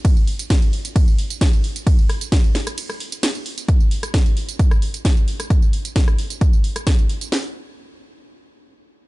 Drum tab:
RD |x---x---x---x---|x---x---x---x---|----------------|----------------|
HH |x-oxxooxx-oxx-ox|x-oxx-oxx-oxx-ox|x-oxxooxx-oxx-ox|x-oxx-oxx-oxx-ox|
TB |xx-xxx-xxx-xxx-x|xx-xxx-xxx-xxx-x|xx-xxx-xxx-xxx-x|xx-xxx-xxx-xxx-x|
SD |----o-------o---|--r-o-or-r--o---|---ro----r--o--r|----or-----ro---|
BD |o---o---o---o---|o---o-----------|o---o---o---o---|o---o---o---o---|

RD |----------------|
HH |o---------------|
TB |----------------|
SD |o---------------|
BD |----------------|